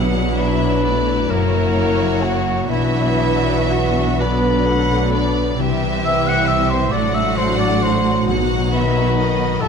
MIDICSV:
0, 0, Header, 1, 11, 480
1, 0, Start_track
1, 0, Tempo, 930233
1, 1390, Time_signature, 6, 3, 24, 8
1, 1391, Tempo, 993377
1, 2351, Tempo, 898204
1, 5023, End_track
2, 0, Start_track
2, 0, Title_t, "Flute"
2, 0, Program_c, 0, 73
2, 192, Note_on_c, 0, 83, 67
2, 671, Note_on_c, 0, 82, 69
2, 679, Note_off_c, 0, 83, 0
2, 1149, Note_on_c, 0, 78, 61
2, 1156, Note_off_c, 0, 82, 0
2, 1392, Note_off_c, 0, 78, 0
2, 1396, Note_on_c, 0, 76, 65
2, 1879, Note_on_c, 0, 78, 58
2, 1886, Note_off_c, 0, 76, 0
2, 2124, Note_on_c, 0, 83, 74
2, 2131, Note_off_c, 0, 78, 0
2, 2833, Note_off_c, 0, 83, 0
2, 3082, Note_on_c, 0, 88, 63
2, 3198, Note_on_c, 0, 90, 56
2, 3206, Note_off_c, 0, 88, 0
2, 3309, Note_on_c, 0, 88, 57
2, 3317, Note_off_c, 0, 90, 0
2, 3426, Note_on_c, 0, 84, 58
2, 3434, Note_off_c, 0, 88, 0
2, 3540, Note_on_c, 0, 86, 66
2, 3548, Note_off_c, 0, 84, 0
2, 3666, Note_on_c, 0, 88, 63
2, 3674, Note_off_c, 0, 86, 0
2, 3787, Note_on_c, 0, 84, 57
2, 3795, Note_off_c, 0, 88, 0
2, 3902, Note_off_c, 0, 84, 0
2, 3905, Note_on_c, 0, 86, 55
2, 4030, Note_on_c, 0, 84, 53
2, 4038, Note_off_c, 0, 86, 0
2, 4270, Note_off_c, 0, 84, 0
2, 4508, Note_on_c, 0, 83, 69
2, 4988, Note_on_c, 0, 81, 65
2, 4996, Note_off_c, 0, 83, 0
2, 5023, Note_off_c, 0, 81, 0
2, 5023, End_track
3, 0, Start_track
3, 0, Title_t, "Violin section"
3, 0, Program_c, 1, 48
3, 0, Note_on_c, 1, 78, 58
3, 190, Note_on_c, 1, 76, 57
3, 192, Note_off_c, 1, 78, 0
3, 431, Note_off_c, 1, 76, 0
3, 437, Note_on_c, 1, 74, 54
3, 669, Note_off_c, 1, 74, 0
3, 677, Note_on_c, 1, 73, 65
3, 1391, Note_on_c, 1, 76, 70
3, 1393, Note_off_c, 1, 73, 0
3, 2107, Note_off_c, 1, 76, 0
3, 2124, Note_on_c, 1, 74, 52
3, 2343, Note_on_c, 1, 78, 61
3, 2352, Note_off_c, 1, 74, 0
3, 2588, Note_off_c, 1, 78, 0
3, 2593, Note_on_c, 1, 74, 57
3, 2827, Note_off_c, 1, 74, 0
3, 2843, Note_on_c, 1, 76, 66
3, 3555, Note_off_c, 1, 76, 0
3, 3560, Note_on_c, 1, 78, 67
3, 4268, Note_off_c, 1, 78, 0
3, 4275, Note_on_c, 1, 78, 63
3, 4508, Note_off_c, 1, 78, 0
3, 4514, Note_on_c, 1, 76, 55
3, 4752, Note_off_c, 1, 76, 0
3, 4752, Note_on_c, 1, 75, 56
3, 4986, Note_off_c, 1, 75, 0
3, 4988, Note_on_c, 1, 76, 63
3, 5023, Note_off_c, 1, 76, 0
3, 5023, End_track
4, 0, Start_track
4, 0, Title_t, "Clarinet"
4, 0, Program_c, 2, 71
4, 200, Note_on_c, 2, 71, 79
4, 670, Note_on_c, 2, 70, 84
4, 677, Note_off_c, 2, 71, 0
4, 1146, Note_on_c, 2, 66, 72
4, 1154, Note_off_c, 2, 70, 0
4, 1390, Note_off_c, 2, 66, 0
4, 1395, Note_on_c, 2, 64, 75
4, 1885, Note_on_c, 2, 66, 65
4, 1892, Note_off_c, 2, 64, 0
4, 2119, Note_on_c, 2, 71, 80
4, 2126, Note_off_c, 2, 66, 0
4, 2830, Note_off_c, 2, 71, 0
4, 3083, Note_on_c, 2, 76, 78
4, 3209, Note_on_c, 2, 78, 69
4, 3217, Note_off_c, 2, 76, 0
4, 3306, Note_on_c, 2, 76, 71
4, 3314, Note_off_c, 2, 78, 0
4, 3439, Note_on_c, 2, 72, 63
4, 3447, Note_off_c, 2, 76, 0
4, 3548, Note_on_c, 2, 74, 72
4, 3556, Note_off_c, 2, 72, 0
4, 3669, Note_on_c, 2, 76, 69
4, 3677, Note_off_c, 2, 74, 0
4, 3785, Note_on_c, 2, 72, 67
4, 3793, Note_off_c, 2, 76, 0
4, 3903, Note_on_c, 2, 74, 72
4, 3911, Note_off_c, 2, 72, 0
4, 4026, Note_off_c, 2, 74, 0
4, 4028, Note_on_c, 2, 72, 63
4, 4264, Note_off_c, 2, 72, 0
4, 4509, Note_on_c, 2, 71, 77
4, 4982, Note_on_c, 2, 69, 70
4, 4990, Note_off_c, 2, 71, 0
4, 5023, Note_off_c, 2, 69, 0
4, 5023, End_track
5, 0, Start_track
5, 0, Title_t, "Violin section"
5, 0, Program_c, 3, 48
5, 0, Note_on_c, 3, 62, 57
5, 0, Note_on_c, 3, 64, 53
5, 671, Note_on_c, 3, 66, 59
5, 672, Note_off_c, 3, 62, 0
5, 1369, Note_off_c, 3, 64, 0
5, 1386, Note_off_c, 3, 66, 0
5, 1387, Note_on_c, 3, 62, 58
5, 1393, Note_on_c, 3, 66, 58
5, 2108, Note_off_c, 3, 66, 0
5, 2115, Note_off_c, 3, 62, 0
5, 2120, Note_on_c, 3, 62, 61
5, 2831, Note_off_c, 3, 62, 0
5, 2837, Note_on_c, 3, 60, 55
5, 2837, Note_on_c, 3, 67, 60
5, 3538, Note_off_c, 3, 67, 0
5, 3545, Note_on_c, 3, 66, 62
5, 3547, Note_on_c, 3, 62, 61
5, 3552, Note_off_c, 3, 60, 0
5, 4253, Note_off_c, 3, 62, 0
5, 4253, Note_off_c, 3, 66, 0
5, 4273, Note_on_c, 3, 63, 57
5, 4275, Note_on_c, 3, 66, 56
5, 4978, Note_off_c, 3, 66, 0
5, 4991, Note_off_c, 3, 63, 0
5, 4991, Note_on_c, 3, 67, 58
5, 4992, Note_on_c, 3, 64, 58
5, 5023, Note_off_c, 3, 64, 0
5, 5023, Note_off_c, 3, 67, 0
5, 5023, End_track
6, 0, Start_track
6, 0, Title_t, "Harp"
6, 0, Program_c, 4, 46
6, 0, Note_on_c, 4, 47, 51
6, 189, Note_on_c, 4, 59, 43
6, 428, Note_on_c, 4, 62, 36
6, 433, Note_on_c, 4, 66, 41
6, 667, Note_on_c, 4, 42, 55
6, 688, Note_off_c, 4, 62, 0
6, 689, Note_off_c, 4, 59, 0
6, 690, Note_off_c, 4, 47, 0
6, 907, Note_on_c, 4, 61, 42
6, 1136, Note_off_c, 4, 66, 0
6, 1140, Note_on_c, 4, 64, 37
6, 1142, Note_on_c, 4, 66, 43
6, 1387, Note_on_c, 4, 47, 55
6, 1406, Note_off_c, 4, 64, 0
6, 1407, Note_off_c, 4, 42, 0
6, 1409, Note_off_c, 4, 61, 0
6, 1628, Note_on_c, 4, 59, 44
6, 1877, Note_on_c, 4, 62, 42
6, 2119, Note_on_c, 4, 71, 48
6, 2352, Note_on_c, 4, 74, 52
6, 2588, Note_off_c, 4, 71, 0
6, 2595, Note_on_c, 4, 71, 48
6, 2830, Note_on_c, 4, 48, 55
6, 2849, Note_off_c, 4, 47, 0
6, 2849, Note_off_c, 4, 66, 0
6, 2850, Note_off_c, 4, 59, 0
6, 2850, Note_off_c, 4, 62, 0
6, 2851, Note_off_c, 4, 74, 0
6, 2852, Note_off_c, 4, 71, 0
6, 3075, Note_on_c, 4, 60, 44
6, 3305, Note_off_c, 4, 60, 0
6, 3309, Note_on_c, 4, 60, 39
6, 3315, Note_on_c, 4, 64, 42
6, 3547, Note_on_c, 4, 45, 57
6, 3568, Note_off_c, 4, 48, 0
6, 3569, Note_off_c, 4, 64, 0
6, 3785, Note_on_c, 4, 54, 42
6, 4017, Note_off_c, 4, 60, 0
6, 4023, Note_on_c, 4, 60, 43
6, 4026, Note_on_c, 4, 66, 47
6, 4266, Note_on_c, 4, 47, 58
6, 4286, Note_off_c, 4, 60, 0
6, 4287, Note_off_c, 4, 45, 0
6, 4501, Note_on_c, 4, 59, 42
6, 4740, Note_off_c, 4, 66, 0
6, 4744, Note_on_c, 4, 63, 38
6, 4747, Note_on_c, 4, 66, 40
6, 4983, Note_on_c, 4, 43, 54
6, 5006, Note_off_c, 4, 63, 0
6, 5007, Note_off_c, 4, 47, 0
6, 5007, Note_off_c, 4, 54, 0
6, 5007, Note_off_c, 4, 66, 0
6, 5023, Note_off_c, 4, 43, 0
6, 5023, Note_off_c, 4, 59, 0
6, 5023, End_track
7, 0, Start_track
7, 0, Title_t, "French horn section"
7, 0, Program_c, 5, 60
7, 0, Note_on_c, 5, 54, 59
7, 0, Note_on_c, 5, 62, 55
7, 660, Note_off_c, 5, 62, 0
7, 661, Note_off_c, 5, 54, 0
7, 676, Note_on_c, 5, 54, 55
7, 676, Note_on_c, 5, 64, 54
7, 1314, Note_off_c, 5, 54, 0
7, 1314, Note_off_c, 5, 64, 0
7, 1401, Note_on_c, 5, 54, 60
7, 1403, Note_on_c, 5, 62, 59
7, 2112, Note_off_c, 5, 54, 0
7, 2117, Note_off_c, 5, 62, 0
7, 2123, Note_on_c, 5, 62, 60
7, 2124, Note_on_c, 5, 54, 55
7, 2818, Note_off_c, 5, 54, 0
7, 2818, Note_off_c, 5, 62, 0
7, 2827, Note_on_c, 5, 64, 65
7, 2830, Note_on_c, 5, 55, 68
7, 3526, Note_off_c, 5, 64, 0
7, 3527, Note_off_c, 5, 55, 0
7, 3542, Note_on_c, 5, 54, 61
7, 3546, Note_on_c, 5, 66, 62
7, 4244, Note_off_c, 5, 54, 0
7, 4264, Note_on_c, 5, 51, 59
7, 4895, Note_off_c, 5, 51, 0
7, 4895, Note_off_c, 5, 66, 0
7, 4986, Note_on_c, 5, 67, 62
7, 4987, Note_on_c, 5, 52, 57
7, 5023, Note_off_c, 5, 52, 0
7, 5023, Note_off_c, 5, 67, 0
7, 5023, End_track
8, 0, Start_track
8, 0, Title_t, "Viola section"
8, 0, Program_c, 6, 48
8, 0, Note_on_c, 6, 54, 57
8, 0, Note_on_c, 6, 59, 55
8, 188, Note_off_c, 6, 59, 0
8, 199, Note_on_c, 6, 62, 49
8, 436, Note_off_c, 6, 62, 0
8, 441, Note_on_c, 6, 57, 53
8, 672, Note_off_c, 6, 54, 0
8, 676, Note_off_c, 6, 57, 0
8, 676, Note_on_c, 6, 58, 56
8, 678, Note_on_c, 6, 54, 55
8, 1380, Note_off_c, 6, 54, 0
8, 1393, Note_off_c, 6, 58, 0
8, 1400, Note_on_c, 6, 59, 58
8, 1401, Note_on_c, 6, 52, 58
8, 2112, Note_off_c, 6, 52, 0
8, 2125, Note_off_c, 6, 59, 0
8, 2129, Note_on_c, 6, 50, 60
8, 2131, Note_on_c, 6, 59, 62
8, 2351, Note_off_c, 6, 59, 0
8, 2356, Note_on_c, 6, 57, 52
8, 2592, Note_on_c, 6, 59, 54
8, 2595, Note_off_c, 6, 57, 0
8, 2830, Note_on_c, 6, 52, 59
8, 2830, Note_on_c, 6, 55, 56
8, 2832, Note_off_c, 6, 59, 0
8, 2836, Note_off_c, 6, 50, 0
8, 3534, Note_off_c, 6, 55, 0
8, 3549, Note_off_c, 6, 52, 0
8, 3552, Note_on_c, 6, 57, 59
8, 3553, Note_on_c, 6, 54, 61
8, 4257, Note_off_c, 6, 54, 0
8, 4271, Note_off_c, 6, 57, 0
8, 4277, Note_on_c, 6, 54, 55
8, 4278, Note_off_c, 6, 54, 0
8, 4278, Note_on_c, 6, 54, 57
8, 4510, Note_on_c, 6, 51, 51
8, 4737, Note_off_c, 6, 51, 0
8, 4743, Note_on_c, 6, 51, 53
8, 4981, Note_off_c, 6, 51, 0
8, 4982, Note_on_c, 6, 59, 55
8, 4983, Note_on_c, 6, 52, 60
8, 4994, Note_off_c, 6, 54, 0
8, 5023, Note_off_c, 6, 52, 0
8, 5023, Note_off_c, 6, 59, 0
8, 5023, End_track
9, 0, Start_track
9, 0, Title_t, "Cello section"
9, 0, Program_c, 7, 48
9, 0, Note_on_c, 7, 47, 56
9, 670, Note_on_c, 7, 42, 56
9, 671, Note_off_c, 7, 47, 0
9, 1376, Note_off_c, 7, 42, 0
9, 1394, Note_on_c, 7, 47, 59
9, 2812, Note_off_c, 7, 47, 0
9, 2830, Note_on_c, 7, 48, 62
9, 3534, Note_off_c, 7, 48, 0
9, 3546, Note_on_c, 7, 45, 62
9, 4267, Note_off_c, 7, 45, 0
9, 4267, Note_on_c, 7, 47, 59
9, 4988, Note_off_c, 7, 47, 0
9, 4990, Note_on_c, 7, 43, 53
9, 5023, Note_off_c, 7, 43, 0
9, 5023, End_track
10, 0, Start_track
10, 0, Title_t, "Timpani"
10, 0, Program_c, 8, 47
10, 0, Note_on_c, 8, 47, 63
10, 652, Note_off_c, 8, 47, 0
10, 4274, Note_on_c, 8, 47, 56
10, 4970, Note_off_c, 8, 47, 0
10, 5023, End_track
11, 0, Start_track
11, 0, Title_t, "Double bass section"
11, 0, Program_c, 10, 48
11, 0, Note_on_c, 10, 35, 58
11, 674, Note_off_c, 10, 35, 0
11, 674, Note_on_c, 10, 30, 57
11, 1377, Note_off_c, 10, 30, 0
11, 1392, Note_on_c, 10, 35, 59
11, 2811, Note_off_c, 10, 35, 0
11, 2831, Note_on_c, 10, 36, 60
11, 3535, Note_off_c, 10, 36, 0
11, 3546, Note_on_c, 10, 33, 59
11, 4267, Note_off_c, 10, 33, 0
11, 4268, Note_on_c, 10, 35, 58
11, 4989, Note_off_c, 10, 35, 0
11, 4994, Note_on_c, 10, 31, 58
11, 5023, Note_off_c, 10, 31, 0
11, 5023, End_track
0, 0, End_of_file